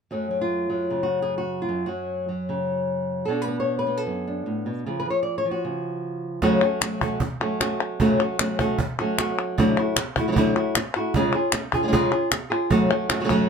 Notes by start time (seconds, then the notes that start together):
0.11 F#2 F#3 A3 C#4
0.31 F#3
0.41 F4
0.70 F#3
0.90 C#3
1.03 F#4
1.22 G#4
1.38 F#4
1.62 F4
1.69 F#2
1.86 F#3 F#4
2.29 F#3
2.49 C#3
3.25 B2 B3 D4 A4
3.30 F#4
3.42 B4
3.48 B3
3.60 C#5
3.79 B4
3.87 B3
3.97 A4
4.07 F#2
4.27 D4
4.46 A2
4.66 B2
4.86 C#3 F3 G#4
5.00 B4
5.05 F3
5.10 C#5
5.23 D5
5.38 C#5
5.45 F3
5.51 F#4
5.65 C#3
6.42 F#2 C#3 F#3 A3 C#4 F#4, cajon bass, cajon slap
6.61 F#3 A3 C#4 F#4, cajon slap
6.81 F#3 A3 C#4 F#4, cajon slap, clap
7.01 F#3 A3 C#4 F#4, cajon bass
7.20 muted nylon-string guitar stroke, cajon bass
7.41 F#3 A3 C#4 F#4
7.61 F#3 A3 C#4 F#4, cajon slap, clap
7.80 cajon slap
8.00 F#2 C#3 F#3 A3 C#4 F#4, cajon bass
8.20 F#3 A3 C#4 F#4, cajon slap
8.39 F#3 A3 C#4 F#4, cajon slap, clap
8.59 F#3 A3 C#4 F#4, cajon bass
8.78 muted nylon-string guitar stroke, cajon bass
8.99 F#3 A3 C#4 F#4
9.18 F#3 A3 C#4 F#4, cajon slap, clap
9.58 D3 F#3 A3 E4 F#4, cajon bass
9.78 A3 E4 F#4, cajon slap
9.96 muted nylon-string guitar stroke, cajon slap, clap
10.16 A3 E4 F#4, cajon bass
10.28 F#3 A3 E4 F#4
10.32 F#3 A3 E4 F#4
10.36 D3 F#3 A3 E4 F#4, cajon bass
10.56 A3 E4 F#4
10.75 muted nylon-string guitar stroke, cajon slap, clap
10.96 A3 E4 F#4
11.14 C#3 G#3 C#4 F4 G#4, cajon bass
11.35 C#4 F4 G#4
11.52 muted nylon-string guitar stroke, cajon slap, clap
11.73 C#4 F4 G#4, cajon bass
11.83 G#3 C#4 F4 G#4
11.88 G#3 C#4 F4 G#4
11.92 C#3 G#3 C#4 F4 G#4, cajon bass
12.11 C#4 F4 G#4
12.31 muted nylon-string guitar stroke, cajon slap, clap
12.50 C#4 F4 G#4
12.70 F#2 C#3 F#3 A3 C#4 F#4, cajon bass
12.91 F#3 A3 C#4 F#4
13.10 F#3 A3 C#4 F#4, cajon slap, clap
13.20 C#3 F#3 A3 C#4 F#4
13.24 C#3 F#3 A3 C#4 F#4
13.29 F#2 C#3 F#3 A3 C#4 F#4, cajon bass